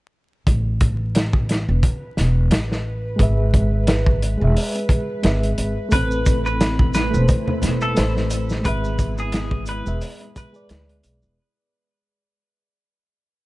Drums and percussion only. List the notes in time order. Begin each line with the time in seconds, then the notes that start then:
0.47 kick, closed hi-hat
0.81 kick, closed hi-hat
1.15 snare, closed hi-hat
1.33 kick
1.49 snare, closed hi-hat
1.83 kick, closed hi-hat
2.17 snare, closed hi-hat
2.51 snare, closed hi-hat
2.72 snare
3.19 kick, closed hi-hat
3.54 kick, closed hi-hat
3.87 snare, closed hi-hat
4.06 kick
4.22 closed hi-hat
4.57 open hi-hat
4.76 closed hi-hat
4.89 kick, closed hi-hat
5.23 snare, closed hi-hat
5.43 closed hi-hat
5.58 closed hi-hat
5.91 kick, closed hi-hat, maracas
6.11 maracas
6.26 kick, closed hi-hat, maracas
6.46 maracas
6.61 snare, closed hi-hat, maracas
6.79 kick, low conga
6.94 snare, closed hi-hat, maracas
7.14 maracas
7.28 kick, closed hi-hat, maracas
7.47 low conga
7.62 snare, closed hi-hat, low conga, maracas
7.81 maracas
7.97 snare, closed hi-hat, maracas
8.17 snare
8.30 closed hi-hat, maracas
8.49 snare, maracas
8.65 kick, closed hi-hat, maracas
8.84 maracas
8.99 kick, closed hi-hat, maracas
9.18 maracas
9.32 snare, closed hi-hat, maracas
9.51 kick
9.66 closed hi-hat, maracas
9.87 maracas
10.01 open hi-hat, maracas
10.21 closed hi-hat
10.36 kick, closed hi-hat, maracas
10.54 maracas
10.69 snare, closed hi-hat, maracas
10.89 closed hi-hat
11.03 closed hi-hat, maracas
11.22 maracas